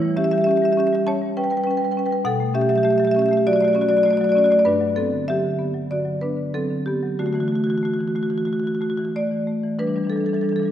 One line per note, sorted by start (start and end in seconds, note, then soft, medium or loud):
0.00 1.02 E3 medium
0.00 0.26 G3 soft
0.00 0.16 E4 medium
0.00 0.16 C#5 medium
0.17 0.41 C#4 soft
0.17 0.24 G4 medium
0.17 0.24 E5 medium
0.24 0.33 G4 soft
0.24 0.31 E5 medium
0.31 0.56 G3 soft
0.31 0.41 G4 soft
0.31 0.38 E5 medium
0.38 0.49 G4 soft
0.38 0.44 E5 medium
0.44 0.71 C#4 medium
0.44 0.51 E5 medium
0.49 0.56 G4 soft
0.49 0.57 E5 medium
0.56 0.64 G4 soft
0.56 0.65 E5 medium
0.62 0.86 G3 soft
0.62 0.72 G4 soft
0.62 0.73 E5 medium
0.72 0.79 G4 soft
0.72 0.80 E5 medium
0.77 1.01 C#4 medium
0.77 0.88 G4 soft
0.77 0.87 E5 medium
0.87 0.95 G4 soft
0.87 0.95 E5 medium
0.93 1.16 G3 soft
0.93 1.02 G4 soft
0.93 1.02 E5 medium
1.07 1.30 C#4 soft
1.07 1.35 C#5 medium
1.07 1.35 A5 medium
1.22 1.45 G3 soft
1.37 1.60 C#4 soft
1.37 1.44 B4 medium
1.37 1.44 G5 medium
1.44 1.50 B4 soft
1.44 1.51 G5 medium
1.50 1.76 G3 soft
1.50 1.57 B4 soft
1.50 1.57 G5 medium
1.57 1.64 B4 soft
1.57 1.64 G5 medium
1.64 1.90 C#4 medium
1.64 1.71 B4 soft
1.64 1.71 G5 medium
1.71 1.78 B4 soft
1.71 1.77 G5 soft
1.77 1.85 B4 soft
1.77 1.84 G5 medium
1.82 2.05 G3 soft
1.82 1.91 B4 soft
1.82 1.92 G5 medium
1.91 1.99 B4 soft
1.91 1.99 G5 medium
1.97 2.20 C#4 soft
1.97 2.06 B4 soft
1.97 2.06 G5 soft
2.06 2.12 B4 soft
2.06 2.12 G5 medium
2.11 2.25 G3 soft
2.11 2.22 B4 soft
2.11 2.22 G5 medium
2.25 3.41 B2 medium
2.25 2.53 A4 medium
2.25 2.53 F#5 medium
2.40 2.64 A3 soft
2.54 2.78 C#4 soft
2.54 2.62 G4 medium
2.54 2.61 E5 medium
2.61 2.70 G4 soft
2.61 2.69 E5 medium
2.69 2.94 F#3 soft
2.69 2.78 G4 medium
2.69 2.76 E5 medium
2.76 2.85 G4 soft
2.76 2.83 E5 medium
2.83 3.09 A3 medium
2.83 2.93 G4 medium
2.83 2.90 E5 medium
2.90 3.00 G4 soft
2.90 2.98 E5 medium
2.98 3.24 F#3 soft
2.98 3.07 G4 medium
2.98 3.05 E5 medium
3.05 3.15 G4 soft
3.05 3.11 E5 medium
3.11 3.22 G4 medium
3.11 3.19 E5 medium
3.17 3.40 C#4 soft
3.17 3.26 E5 medium
3.22 3.29 G4 soft
3.22 3.33 E5 medium
3.29 3.54 A3 soft
3.29 3.37 G4 soft
3.33 3.42 E5 medium
3.37 3.41 G4 medium
3.47 3.70 F#3 soft
3.47 3.56 F#4 medium
3.47 3.53 D5 medium
3.53 3.65 F#4 soft
3.53 3.61 D5 medium
3.61 3.85 A3 soft
3.61 3.73 F#4 medium
3.61 3.68 D5 medium
3.68 3.75 D5 medium
3.73 3.99 C#4 soft
3.73 3.81 F#4 medium
3.73 3.82 D5 medium
3.81 3.89 F#4 soft
3.81 3.89 D5 medium
3.89 4.15 F#3 soft
3.89 3.98 F#4 soft
3.89 3.97 D5 medium
3.97 4.06 F#4 medium
3.97 4.03 D5 medium
4.03 4.30 A3 soft
4.03 4.13 F#4 soft
4.03 4.11 D5 medium
4.11 4.21 F#4 soft
4.11 4.17 D5 medium
4.17 4.44 F#3 soft
4.17 4.24 D5 medium
4.21 4.29 F#4 medium
4.21 4.32 D5 medium
4.29 4.37 F#4 medium
4.29 4.38 D5 medium
4.35 4.59 C#4 soft
4.35 4.44 F#4 soft
4.35 4.46 D5 medium
4.44 4.52 F#4 medium
4.44 4.52 D5 medium
4.51 4.65 A3 soft
4.51 4.62 F#4 medium
4.51 4.59 D5 medium
4.59 4.62 D5 medium
4.65 5.87 G2 medium
4.65 4.95 D4 medium
4.65 4.95 B4 medium
4.81 5.06 F#3 soft
4.96 5.22 B3 soft
4.96 5.27 C4 soft
4.96 5.27 A4 medium
5.12 5.38 D3 soft
5.28 5.54 F#3 soft
5.28 5.87 G4 medium
5.28 5.88 E5 medium
5.45 5.69 D3 soft
5.59 5.84 B3 soft
5.74 5.99 F#3 soft
5.90 6.15 D3 soft
5.90 6.20 F#4 soft
5.90 6.20 D5 medium
6.05 6.30 F#3 soft
6.21 6.47 B3 soft
6.21 6.51 D4 soft
6.21 6.52 B4 medium
6.37 6.62 D3 soft
6.54 6.79 F#3 soft
6.54 6.84 C4 soft
6.54 6.85 A4 medium
6.70 6.95 D3 soft
6.86 7.17 B3 soft
6.86 7.17 G4 medium
7.03 7.19 F#3 soft
7.19 8.44 D3 soft
7.19 7.27 A3 soft
7.19 7.26 F#4 medium
7.26 7.34 A3 soft
7.26 7.33 F#4 medium
7.33 7.60 E3 soft
7.33 7.43 A3 soft
7.33 7.40 F#4 medium
7.40 7.51 A3 soft
7.40 7.48 F#4 soft
7.48 7.55 F#4 medium
7.52 7.77 A3 soft
7.52 7.64 F#4 soft
7.64 7.92 E3 soft
7.64 7.70 F#4 medium
7.70 7.78 F#4 soft
7.78 7.85 F#4 medium
7.83 8.08 A3 soft
7.83 7.93 F#4 medium
7.93 8.01 F#4 soft
7.99 8.24 E3 soft
7.99 8.08 F#4 soft
8.08 8.16 F#4 medium
8.15 8.41 A3 soft
8.15 8.23 F#4 soft
8.23 8.30 F#4 soft
8.30 8.57 E3 soft
8.30 8.38 F#4 soft
8.38 8.45 F#4 soft
8.45 8.74 A3 soft
8.45 8.53 F#4 soft
8.53 8.60 F#4 soft
8.60 8.67 F#4 soft
8.64 8.91 E3 soft
8.64 8.75 F#4 medium
8.75 8.82 F#4 soft
8.81 9.08 A3 soft
8.81 8.90 F#4 soft
8.90 8.97 F#4 soft
8.97 9.25 E3 soft
8.97 9.05 F#4 medium
9.05 9.11 F#4 soft
9.16 9.41 A3 soft
9.16 9.77 D5 medium
9.31 9.57 E3 soft
9.47 9.73 A3 soft
9.63 9.78 E3 soft
9.79 9.89 E3 soft
9.79 9.87 G3 soft
9.79 9.87 D4 soft
9.79 10.09 B4 medium
9.87 9.98 E3 soft
9.87 9.96 G3 soft
9.87 9.96 D4 soft
9.96 10.07 E3 soft
9.96 10.04 G3 soft
9.96 10.05 D4 soft
10.04 10.16 E3 soft
10.04 10.12 G3 soft
10.04 10.13 D4 soft
10.10 10.20 G3 soft
10.10 10.21 D4 soft
10.10 10.18 A4 medium
10.16 10.24 E3 soft
10.16 10.27 G3 soft
10.16 10.26 A4 soft
10.21 10.33 E3 soft
10.21 10.29 D4 soft
10.26 10.35 G3 soft
10.26 10.37 D4 soft
10.26 10.34 A4 medium
10.33 10.43 E3 soft
10.33 10.43 G3 soft
10.33 10.44 D4 soft
10.33 10.41 A4 soft
10.41 10.53 E3 soft
10.41 10.51 G3 soft
10.41 10.52 D4 soft
10.41 10.49 A4 medium
10.49 10.62 E3 soft
10.49 10.58 G3 soft
10.49 10.59 D4 soft
10.49 10.56 A4 soft
10.56 10.65 G3 soft
10.56 10.68 D4 soft
10.56 10.63 A4 medium
10.62 10.72 E3 soft
10.62 10.72 G3 soft
10.62 10.72 A4 soft
10.68 10.72 D4 soft